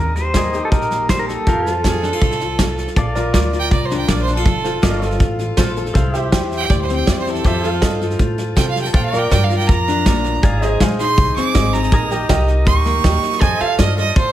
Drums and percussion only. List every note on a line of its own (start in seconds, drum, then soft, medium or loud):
0.16 snare soft
0.34 kick medium
0.34 snare medium
0.34 hi-hat pedal medium
0.53 snare soft
0.72 kick loud
0.72 snare soft
0.81 snare soft
0.91 snare soft
1.09 kick medium
1.09 snare loud
1.09 hi-hat pedal medium
1.28 snare soft
1.47 kick loud
1.47 snare soft
1.66 snare soft
1.84 kick medium
1.84 snare medium
1.84 hi-hat pedal medium
2.03 snare soft
2.22 kick loud
2.22 snare soft
2.31 snare soft
2.40 snare soft
2.59 kick medium
2.59 snare loud
2.59 hi-hat pedal medium
2.78 snare soft
2.87 snare soft
2.96 kick loud
2.96 snare soft
3.15 snare soft
3.34 kick medium
3.34 snare medium
3.34 hi-hat pedal medium
3.53 snare soft
3.71 kick loud
3.71 snare soft
3.90 snare soft
4.08 kick medium
4.08 snare loud
4.08 hi-hat pedal medium
4.27 snare soft
4.45 kick loud
4.45 snare soft
4.64 snare soft
4.83 kick medium
4.83 snare loud
4.83 hi-hat pedal medium
5.02 snare soft
5.11 snare soft
5.20 kick loud
5.20 snare soft
5.39 snare soft
5.57 kick medium
5.57 snare loud
5.57 hi-hat pedal medium
5.76 snare soft
5.86 snare soft
5.95 kick loud
5.95 snare soft
6.14 snare soft
6.32 kick medium
6.32 snare loud
6.32 hi-hat pedal medium
6.51 snare soft
6.70 kick loud
6.70 snare soft
6.89 snare soft
7.07 kick medium
7.07 snare loud
7.07 hi-hat pedal medium
7.26 snare soft
7.35 snare soft
7.44 kick medium
7.44 snare soft
7.63 snare soft
7.82 kick medium
7.82 snare loud
7.82 hi-hat pedal medium
8.01 snare soft
8.10 snare soft
8.19 kick loud
8.19 snare soft
8.38 snare soft
8.57 kick medium
8.57 snare loud
8.57 hi-hat pedal medium
8.76 snare soft
8.85 snare soft
8.94 kick loud
8.94 snare soft
9.13 snare soft
9.31 kick medium
9.31 snare loud
9.31 hi-hat pedal medium
9.50 snare soft
9.60 snare soft
9.69 kick loud
9.69 snare soft
9.88 snare soft
10.06 kick medium
10.06 snare loud
10.06 hi-hat pedal medium
10.24 snare soft
10.43 kick loud
10.43 snare soft
10.62 snare soft
10.80 kick medium
10.80 snare medium
10.80 hi-hat pedal medium
10.99 snare soft
11.17 kick loud
11.17 snare soft
11.36 snare soft
11.55 kick medium
11.55 snare loud
11.55 hi-hat pedal medium
11.73 snare soft
11.83 snare soft
11.91 kick loud
11.91 snare soft
12.10 snare soft
12.29 kick medium
12.29 snare loud
12.29 hi-hat pedal medium
12.48 snare soft
12.66 kick loud
12.66 snare soft
12.85 snare soft
13.04 kick medium
13.04 snare loud
13.04 hi-hat pedal medium
13.23 snare soft
13.32 snare soft
13.41 kick loud
13.41 snare soft
13.60 snare soft
13.79 kick medium
13.79 snare medium
13.79 hi-hat pedal medium
13.97 snare soft
14.16 kick loud
14.16 snare soft